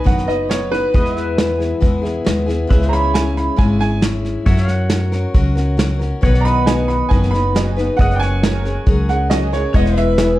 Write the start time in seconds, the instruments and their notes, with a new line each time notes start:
Already playing: pedal steel guitar B4 D#5
0.04 upright bass F#1, steel-string acoustic guitar B2 D#3 F#3 B3 D#4 B4, upright piano F#5, kick, snare
0.18 snare
0.27 steel-string acoustic guitar F#3 B3 D#4 B4, upright piano D#5, snare
0.49 steel-string acoustic guitar F#3 B3 D#4 B4, upright piano C#5, snare, hi-hat pedal
0.71 steel-string acoustic guitar F#3 B3 D#4 B4, upright piano B4, snare
0.94 upright bass E2, steel-string acoustic guitar E3 G#3 B3 E4 G#4, pedal steel guitar B4 D#5, kick, snare
1.06 snare
1.15 pedal steel guitar E5, snare
1.38 snare, hi-hat pedal
1.58 steel-string acoustic guitar B3 E4 G#4, snare
1.80 upright bass E2, steel-string acoustic guitar E3 G#3 B3 E4 G#4, kick, snare
2.02 steel-string acoustic guitar B3 E4 G#4, snare
2.25 upright bass D#2, steel-string acoustic guitar G#3 B3 E4 G#4, snare, hi-hat pedal
2.46 steel-string acoustic guitar B3 E4 G#4, snare
2.67 upright bass C#2, steel-string acoustic guitar C#3 G#3 C#4 E4, pedal steel guitar B4 E5, kick, snare
2.72 steel-string acoustic guitar G#4
2.82 snare
2.89 upright piano A#5
2.93 pedal steel guitar C#5, upright piano B5, snare
3.14 upright piano G#5, snare, hi-hat pedal
3.37 upright piano B5, snare
3.56 upright bass G#1, steel-string acoustic guitar C#3 G#3 C#4 E4 G#4, upright piano G#5, kick, snare
3.79 steel-string acoustic guitar C#4 E4 G#4, upright piano G#5, snare
4.01 steel-string acoustic guitar G#3 C#4 E4 G#4, snare, hi-hat pedal
4.25 snare
4.46 upright bass F#2, steel-string acoustic guitar F#3 C#4 F#4 A#4, pedal steel guitar C#5 E5, kick, snare
4.57 snare
4.68 snare
4.72 pedal steel guitar F#5
4.90 snare, hi-hat pedal
5.12 steel-string acoustic guitar C#4 F#4 A#4, snare
5.34 upright bass C#2, steel-string acoustic guitar F#3 C#4 F#4 A#4, kick, snare
5.55 steel-string acoustic guitar C#4 F#4 A#4, snare
5.77 steel-string acoustic guitar F#3 C#4 F#4 A#4, snare, hi-hat pedal
5.99 steel-string acoustic guitar C#4 F#4 A#4, snare
6.21 upright bass B1, steel-string acoustic guitar B2 D#3 F#3 B3 D#4, pedal steel guitar C#5 F#5, kick, snare
6.26 steel-string acoustic guitar B4
6.34 snare
6.41 upright piano A#5
6.45 pedal steel guitar D#5, upright piano B5, snare
6.66 honky-tonk piano D#4 F#4 B4, upright piano G#5, snare, hi-hat pedal
6.88 upright piano B5, snare
7.09 upright bass F#1, steel-string acoustic guitar B2 D#3 F#3 B3 D#4 B4, upright piano G#5, kick, snare
7.23 snare
7.31 steel-string acoustic guitar B3 D#4 B4, upright piano B5, snare
7.36 steel-string acoustic guitar F#3
7.55 steel-string acoustic guitar F#3 B3 D#4 B4, honky-tonk piano D#4 F#4 G#4, snare, hi-hat pedal
7.76 steel-string acoustic guitar F#3 B3 D#4 B4, snare
7.97 upright bass F#1, steel-string acoustic guitar F#3 C#4 G#4 A#4, upright piano F#5, kick, snare
8.01 pedal steel guitar D#5 F#5
8.11 snare
8.15 upright piano G5
8.20 upright piano G#5, snare
8.26 pedal steel guitar C#5
8.43 honky-tonk piano C#4 F#4 A#4, snare, hi-hat pedal
8.63 steel-string acoustic guitar C#4 G#4 A#4, snare
8.86 upright bass C#2, steel-string acoustic guitar F#3 C#4 G#4 A#4, kick, snare
9.09 steel-string acoustic guitar C#4 G#4 A#4, upright piano F#5, snare
9.30 steel-string acoustic guitar F#3 C#4 G#4 A#4, honky-tonk piano C#4 F#4 G#4, upright piano D#5, snare, hi-hat pedal
9.52 steel-string acoustic guitar C#4 G#4 A#4, upright piano C#5, snare
9.73 upright bass E1, steel-string acoustic guitar E3 G#3 B3 E4, pedal steel guitar C#5 F#5, upright piano D#5, kick, snare
9.78 steel-string acoustic guitar B4
9.86 snare
9.96 pedal steel guitar B4, upright piano E5, snare
10.00 pedal steel guitar E5
10.18 honky-tonk piano E4 G#4 B4, snare, hi-hat pedal